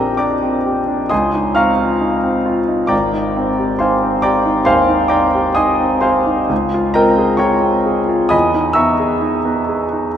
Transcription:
grand piano
Already playing: A#1 C4 D4 G4 A#4 D#5 G5 A#5
0.17 D4 D5 G5 A#5 D6
0.42 C4
0.66 G4
0.87 D4
1.09 C#2 D#5 G#5 C6 D#6
1.34 D#4
1.55 C4 F5 A#5 C#6 F6
1.79 F4
2.01 D#4
2.23 C4
2.46 F4
2.68 D#4
2.87 G#1 D5 G5 A#5 D6
3.13 D#4
3.36 C4
3.59 G4
3.79 D#4 C5 F5 G#5 C6
4.03 C4
4.22 G4 D5 G5 A#5 D6
4.45 D#4
4.65 D#2 C5 F5 G#5 C6
4.88 D#4
5.08 C4 D5 G5 A#5 D6
5.35 G4
5.55 D#4 D#5 G#5 C6 D#6
5.80 C4
6.01 G4 C5 F5 G#5 C6
6.26 D#4
6.49 C#2
6.74 F4
6.94 C4 A#4 D#5 G5 A#5
7.18 G#4
7.37 F4 C#5 G5 A#5 C#6
7.62 C4
7.86 G#4
8.09 F4
8.29 E2 D#5 G#5 B5 D#6
8.54 D#4
8.73 B3 E5 A#5 C#6 E6
9.00 G#4
9.22 D#4
9.45 B3
9.69 G#4
9.92 D#4

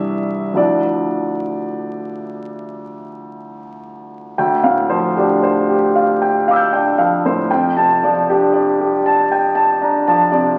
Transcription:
grand piano
Already playing: C2 E3 D4 E4 G4 E5
0.54 D2 F3 D4 E4 D5
4.38 D2 G5
4.64 A2 F5
4.90 F3 C5
5.17 D4 G4
5.43 C5
5.70 G4
5.95 F5
6.22 G5
6.48 F5 D6
6.53 E6 G6
6.72 D4 G5
6.98 F3 F5
7.26 A2 C5
7.51 F2 G5
7.76 C3 A5
8.04 F3 D5
8.30 D4 G4
8.53 D5
8.80 G4
9.06 A5
9.31 G5
9.55 A5
9.82 D4 A#5
10.07 F3 A5
10.32 C3 D5

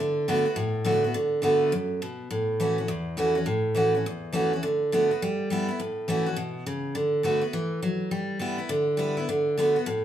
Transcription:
steel-string acoustic guitar
0.00 D3
0.28 D3 A3 B3 F#4
0.45 B3 F#4
0.56 A2
0.85 D3 A3 B3 F#4
1.04 B3 F#4
1.14 D3
1.42 D3 A3 B3 F#4
1.72 F#2
2.02 B2
2.31 A2
2.60 E3 A3 C#4 F#4
2.78 C#4 F#4
2.88 E2
3.17 E3 A3 C#4 F#4
3.35 C#4 F#4
3.46 A2
3.75 E3 A3 C#4 F#4
3.94 C#4 F#4
4.33 E3 A3 C#4 F#4
4.56 C#4
4.63 D3
4.92 D3 A3 B3 F#4
5.11 B3 F#4
5.22 G3
5.50 G3 B3 E4
5.68 B3 E4
5.80 A2
6.08 E3 A3 C#4 F#4
6.26 C#4 F#4
6.36 B2
6.66 C#3
6.95 D3
7.23 D3 A3 B3 F#4
7.41 B3 F#4
7.53 E3
7.82 F#3
8.11 G3
8.39 G3 B3 E4
8.58 B3 E4
8.69 D3
8.97 G3 B3 E4
9.17 B3 E4
9.29 D3
9.57 D3 A3 B3 F#4
9.76 B3 F#4
9.86 A2

